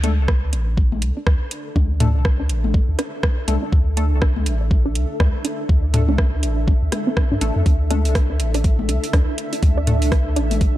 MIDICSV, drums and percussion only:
0, 0, Header, 1, 2, 480
1, 0, Start_track
1, 0, Tempo, 491803
1, 1716, Time_signature, 4, 2, 24, 8
1, 10515, End_track
2, 0, Start_track
2, 0, Title_t, "Drums"
2, 35, Note_on_c, 9, 42, 88
2, 36, Note_on_c, 9, 48, 44
2, 133, Note_off_c, 9, 42, 0
2, 134, Note_off_c, 9, 48, 0
2, 275, Note_on_c, 9, 37, 96
2, 276, Note_on_c, 9, 36, 125
2, 373, Note_off_c, 9, 37, 0
2, 374, Note_off_c, 9, 36, 0
2, 516, Note_on_c, 9, 42, 92
2, 613, Note_off_c, 9, 42, 0
2, 756, Note_on_c, 9, 36, 115
2, 854, Note_off_c, 9, 36, 0
2, 900, Note_on_c, 9, 48, 43
2, 995, Note_on_c, 9, 42, 95
2, 997, Note_off_c, 9, 48, 0
2, 1093, Note_off_c, 9, 42, 0
2, 1235, Note_on_c, 9, 37, 97
2, 1236, Note_on_c, 9, 36, 121
2, 1333, Note_off_c, 9, 37, 0
2, 1334, Note_off_c, 9, 36, 0
2, 1475, Note_on_c, 9, 42, 94
2, 1573, Note_off_c, 9, 42, 0
2, 1716, Note_on_c, 9, 36, 119
2, 1716, Note_on_c, 9, 48, 48
2, 1813, Note_off_c, 9, 48, 0
2, 1814, Note_off_c, 9, 36, 0
2, 1955, Note_on_c, 9, 42, 89
2, 1956, Note_on_c, 9, 45, 86
2, 2053, Note_off_c, 9, 42, 0
2, 2053, Note_off_c, 9, 45, 0
2, 2195, Note_on_c, 9, 37, 95
2, 2196, Note_on_c, 9, 36, 127
2, 2293, Note_off_c, 9, 37, 0
2, 2294, Note_off_c, 9, 36, 0
2, 2435, Note_on_c, 9, 42, 95
2, 2533, Note_off_c, 9, 42, 0
2, 2580, Note_on_c, 9, 48, 47
2, 2676, Note_on_c, 9, 36, 122
2, 2677, Note_off_c, 9, 48, 0
2, 2774, Note_off_c, 9, 36, 0
2, 2915, Note_on_c, 9, 37, 66
2, 2915, Note_on_c, 9, 42, 101
2, 3013, Note_off_c, 9, 37, 0
2, 3013, Note_off_c, 9, 42, 0
2, 3155, Note_on_c, 9, 37, 103
2, 3156, Note_on_c, 9, 36, 123
2, 3253, Note_off_c, 9, 36, 0
2, 3253, Note_off_c, 9, 37, 0
2, 3395, Note_on_c, 9, 42, 101
2, 3396, Note_on_c, 9, 48, 45
2, 3493, Note_off_c, 9, 42, 0
2, 3493, Note_off_c, 9, 48, 0
2, 3636, Note_on_c, 9, 36, 121
2, 3733, Note_off_c, 9, 36, 0
2, 3875, Note_on_c, 9, 42, 94
2, 3973, Note_off_c, 9, 42, 0
2, 4115, Note_on_c, 9, 37, 92
2, 4116, Note_on_c, 9, 36, 122
2, 4213, Note_off_c, 9, 36, 0
2, 4213, Note_off_c, 9, 37, 0
2, 4259, Note_on_c, 9, 48, 46
2, 4355, Note_on_c, 9, 42, 97
2, 4357, Note_off_c, 9, 48, 0
2, 4453, Note_off_c, 9, 42, 0
2, 4596, Note_on_c, 9, 36, 125
2, 4693, Note_off_c, 9, 36, 0
2, 4835, Note_on_c, 9, 42, 101
2, 4933, Note_off_c, 9, 42, 0
2, 5075, Note_on_c, 9, 37, 99
2, 5076, Note_on_c, 9, 36, 127
2, 5076, Note_on_c, 9, 48, 47
2, 5173, Note_off_c, 9, 36, 0
2, 5173, Note_off_c, 9, 37, 0
2, 5174, Note_off_c, 9, 48, 0
2, 5315, Note_on_c, 9, 42, 102
2, 5413, Note_off_c, 9, 42, 0
2, 5556, Note_on_c, 9, 36, 119
2, 5654, Note_off_c, 9, 36, 0
2, 5796, Note_on_c, 9, 42, 92
2, 5796, Note_on_c, 9, 45, 82
2, 5893, Note_off_c, 9, 42, 0
2, 5893, Note_off_c, 9, 45, 0
2, 5939, Note_on_c, 9, 48, 47
2, 6035, Note_on_c, 9, 37, 90
2, 6036, Note_on_c, 9, 36, 124
2, 6037, Note_off_c, 9, 48, 0
2, 6133, Note_off_c, 9, 37, 0
2, 6134, Note_off_c, 9, 36, 0
2, 6275, Note_on_c, 9, 42, 97
2, 6373, Note_off_c, 9, 42, 0
2, 6516, Note_on_c, 9, 36, 123
2, 6614, Note_off_c, 9, 36, 0
2, 6755, Note_on_c, 9, 37, 63
2, 6755, Note_on_c, 9, 42, 96
2, 6756, Note_on_c, 9, 48, 46
2, 6853, Note_off_c, 9, 37, 0
2, 6853, Note_off_c, 9, 42, 0
2, 6853, Note_off_c, 9, 48, 0
2, 6995, Note_on_c, 9, 37, 92
2, 6996, Note_on_c, 9, 36, 121
2, 7093, Note_off_c, 9, 37, 0
2, 7094, Note_off_c, 9, 36, 0
2, 7235, Note_on_c, 9, 42, 99
2, 7333, Note_off_c, 9, 42, 0
2, 7475, Note_on_c, 9, 42, 40
2, 7476, Note_on_c, 9, 36, 113
2, 7573, Note_off_c, 9, 42, 0
2, 7574, Note_off_c, 9, 36, 0
2, 7715, Note_on_c, 9, 42, 85
2, 7716, Note_on_c, 9, 48, 44
2, 7813, Note_off_c, 9, 42, 0
2, 7813, Note_off_c, 9, 48, 0
2, 7859, Note_on_c, 9, 42, 54
2, 7956, Note_off_c, 9, 42, 0
2, 7956, Note_on_c, 9, 36, 121
2, 7956, Note_on_c, 9, 37, 87
2, 7956, Note_on_c, 9, 42, 40
2, 8053, Note_off_c, 9, 37, 0
2, 8053, Note_off_c, 9, 42, 0
2, 8054, Note_off_c, 9, 36, 0
2, 8195, Note_on_c, 9, 42, 91
2, 8293, Note_off_c, 9, 42, 0
2, 8339, Note_on_c, 9, 42, 50
2, 8435, Note_off_c, 9, 42, 0
2, 8435, Note_on_c, 9, 42, 40
2, 8436, Note_on_c, 9, 36, 117
2, 8533, Note_off_c, 9, 36, 0
2, 8533, Note_off_c, 9, 42, 0
2, 8579, Note_on_c, 9, 48, 44
2, 8675, Note_on_c, 9, 42, 100
2, 8677, Note_off_c, 9, 48, 0
2, 8772, Note_off_c, 9, 42, 0
2, 8819, Note_on_c, 9, 42, 50
2, 8915, Note_off_c, 9, 42, 0
2, 8915, Note_on_c, 9, 37, 92
2, 8915, Note_on_c, 9, 42, 41
2, 8916, Note_on_c, 9, 36, 120
2, 9012, Note_off_c, 9, 37, 0
2, 9012, Note_off_c, 9, 42, 0
2, 9013, Note_off_c, 9, 36, 0
2, 9155, Note_on_c, 9, 42, 92
2, 9252, Note_off_c, 9, 42, 0
2, 9298, Note_on_c, 9, 42, 51
2, 9395, Note_off_c, 9, 42, 0
2, 9395, Note_on_c, 9, 42, 42
2, 9395, Note_on_c, 9, 48, 43
2, 9396, Note_on_c, 9, 36, 116
2, 9492, Note_off_c, 9, 42, 0
2, 9493, Note_off_c, 9, 48, 0
2, 9494, Note_off_c, 9, 36, 0
2, 9635, Note_on_c, 9, 42, 89
2, 9635, Note_on_c, 9, 45, 79
2, 9733, Note_off_c, 9, 42, 0
2, 9733, Note_off_c, 9, 45, 0
2, 9779, Note_on_c, 9, 42, 54
2, 9875, Note_off_c, 9, 42, 0
2, 9875, Note_on_c, 9, 37, 88
2, 9875, Note_on_c, 9, 42, 41
2, 9876, Note_on_c, 9, 36, 120
2, 9973, Note_off_c, 9, 37, 0
2, 9973, Note_off_c, 9, 42, 0
2, 9974, Note_off_c, 9, 36, 0
2, 10115, Note_on_c, 9, 42, 90
2, 10213, Note_off_c, 9, 42, 0
2, 10259, Note_on_c, 9, 42, 52
2, 10259, Note_on_c, 9, 48, 43
2, 10355, Note_off_c, 9, 42, 0
2, 10355, Note_on_c, 9, 42, 42
2, 10356, Note_on_c, 9, 36, 114
2, 10357, Note_off_c, 9, 48, 0
2, 10452, Note_off_c, 9, 42, 0
2, 10454, Note_off_c, 9, 36, 0
2, 10515, End_track
0, 0, End_of_file